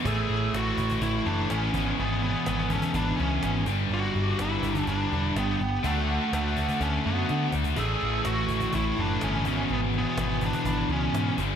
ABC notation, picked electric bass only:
X:1
M:4/4
L:1/8
Q:1/4=124
K:A
V:1 name="Picked electric bass" clef=bass
A,,, A,,, A,,, A,,, A,,, F,,, A,,, G,,, | G,,,2 G,,,2 G,,, C,, G,,, =G,,, | =G,,, G,,, G,,, G,,, G,,, E,,, G,,, G,,, | D,,2 D,,2 D,, F,, D, D,, |
A,,, A,,, A,,, A,,, A,,, F,,, =G,,, ^G,,, | G,,,2 G,,,2 G,,, C,, G,, =G,,, |]